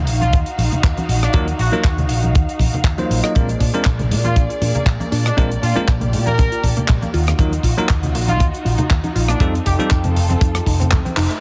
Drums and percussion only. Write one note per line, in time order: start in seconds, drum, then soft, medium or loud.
0.07 open hi-hat loud
0.21 closed hi-hat medium
0.21 high conga medium
0.21 cabasa medium
0.33 kick loud
0.33 closed hi-hat medium
0.33 cabasa medium
0.46 closed hi-hat medium
0.46 cabasa soft
0.58 open hi-hat loud
0.58 high conga medium
0.72 closed hi-hat medium
0.72 low conga medium
0.72 cabasa medium
0.83 kick loud
0.83 clap loud
0.83 closed hi-hat medium
0.83 cabasa medium
0.97 closed hi-hat medium
0.97 high conga loud
0.97 cabasa soft
1.09 open hi-hat loud
1.22 cross-stick medium
1.22 closed hi-hat medium
1.22 cabasa medium
1.33 kick loud
1.33 closed hi-hat medium
1.33 high conga medium
1.33 cabasa medium
1.48 closed hi-hat medium
1.48 cabasa soft
1.59 open hi-hat loud
1.73 closed hi-hat medium
1.73 high conga medium
1.73 cabasa medium
1.84 kick loud
1.84 clap loud
1.84 closed hi-hat medium
1.84 cabasa medium
1.98 closed hi-hat medium
1.98 low conga medium
1.98 cabasa soft
2.09 open hi-hat loud
2.22 closed hi-hat medium
2.22 high conga medium
2.22 cabasa medium
2.35 kick loud
2.35 closed hi-hat medium
2.35 cabasa medium
2.49 closed hi-hat soft
2.49 cabasa soft
2.59 kick medium
2.59 open hi-hat loud
2.59 high conga medium
2.73 closed hi-hat medium
2.73 low conga medium
2.73 cabasa medium
2.84 kick loud
2.84 clap loud
2.84 closed hi-hat medium
2.84 cabasa medium
2.98 closed hi-hat medium
2.98 high conga medium
2.98 cabasa soft
3.11 open hi-hat loud
3.24 cross-stick medium
3.24 closed hi-hat medium
3.24 cabasa medium
3.35 kick loud
3.35 closed hi-hat medium
3.35 high conga medium
3.35 cabasa medium
3.48 closed hi-hat medium
3.48 cabasa soft
3.60 kick medium
3.60 open hi-hat loud
3.73 closed hi-hat medium
3.73 high conga medium
3.73 cabasa medium
3.84 kick loud
3.84 clap loud
3.84 closed hi-hat medium
3.84 cabasa medium
3.99 closed hi-hat medium
3.99 low conga medium
3.99 cabasa soft
4.11 open hi-hat loud
4.24 closed hi-hat soft
4.24 high conga medium
4.24 cabasa medium
4.36 kick loud
4.36 closed hi-hat medium
4.36 cabasa medium
4.50 closed hi-hat medium
4.50 cabasa soft
4.61 open hi-hat loud
4.61 high conga medium
4.75 closed hi-hat medium
4.75 low conga medium
4.75 cabasa medium
4.86 kick loud
4.86 clap loud
4.86 closed hi-hat medium
4.86 cabasa medium
5.00 closed hi-hat medium
5.00 high conga loud
5.00 cabasa soft
5.12 open hi-hat loud
5.25 cross-stick medium
5.25 closed hi-hat medium
5.25 cabasa medium
5.37 kick loud
5.37 closed hi-hat medium
5.37 high conga loud
5.37 cabasa medium
5.51 closed hi-hat medium
5.51 cabasa soft
5.63 open hi-hat loud
5.76 closed hi-hat medium
5.76 high conga medium
5.76 cabasa medium
5.88 kick loud
5.88 clap loud
5.88 closed hi-hat medium
5.88 cabasa medium
6.01 closed hi-hat medium
6.01 low conga medium
6.01 cabasa soft
6.13 open hi-hat loud
6.26 closed hi-hat medium
6.26 high conga medium
6.26 cabasa medium
6.38 kick loud
6.38 closed hi-hat medium
6.38 cabasa medium
6.52 closed hi-hat medium
6.52 cabasa soft
6.64 kick medium
6.64 open hi-hat loud
6.64 high conga medium
6.77 closed hi-hat medium
6.77 low conga medium
6.77 cabasa medium
6.88 kick loud
6.88 clap loud
6.88 closed hi-hat medium
6.88 cabasa medium
7.02 closed hi-hat medium
7.02 high conga medium
7.02 cabasa soft
7.14 open hi-hat loud
7.27 cross-stick medium
7.27 closed hi-hat medium
7.27 cabasa medium
7.39 kick loud
7.39 closed hi-hat medium
7.39 high conga medium
7.39 cabasa medium
7.52 closed hi-hat medium
7.52 cabasa soft
7.63 kick medium
7.63 open hi-hat loud
7.78 closed hi-hat medium
7.78 high conga medium
7.78 cabasa medium
7.89 kick loud
7.89 clap loud
7.89 closed hi-hat medium
7.89 cabasa medium
8.03 closed hi-hat medium
8.03 low conga medium
8.03 cabasa soft
8.15 open hi-hat loud
8.28 closed hi-hat medium
8.28 high conga medium
8.28 cabasa medium
8.40 kick loud
8.40 closed hi-hat medium
8.40 cabasa medium
8.53 closed hi-hat medium
8.53 cabasa soft
8.65 open hi-hat loud
8.65 high conga medium
8.78 closed hi-hat medium
8.78 low conga medium
8.78 cabasa medium
8.90 kick loud
8.90 clap loud
8.90 closed hi-hat medium
8.90 cabasa medium
9.04 closed hi-hat medium
9.04 high conga medium
9.04 cabasa soft
9.16 open hi-hat loud
9.28 cross-stick medium
9.28 closed hi-hat medium
9.28 cabasa medium
9.40 kick loud
9.40 closed hi-hat medium
9.40 high conga medium
9.40 cabasa medium
9.55 closed hi-hat medium
9.55 cabasa soft
9.66 kick medium
9.66 open hi-hat loud
9.79 closed hi-hat medium
9.79 high conga medium
9.79 cabasa medium
9.90 kick loud
9.90 clap loud
9.90 closed hi-hat medium
9.90 cabasa medium
10.04 closed hi-hat medium
10.04 low conga medium
10.04 cabasa soft
10.16 open hi-hat loud
10.30 closed hi-hat medium
10.30 high conga loud
10.30 cabasa medium
10.41 kick loud
10.41 closed hi-hat medium
10.41 cabasa medium
10.55 cross-stick medium
10.55 closed hi-hat medium
10.55 cabasa soft
10.66 kick medium
10.66 open hi-hat loud
10.66 high conga medium
10.80 closed hi-hat medium
10.80 low conga medium
10.80 cabasa medium
10.91 kick loud
10.91 clap loud
10.91 closed hi-hat medium
10.91 cabasa medium
11.05 closed hi-hat medium
11.05 high conga loud
11.05 cabasa soft
11.17 clap medium
11.17 open hi-hat loud
11.30 closed hi-hat medium
11.30 cabasa medium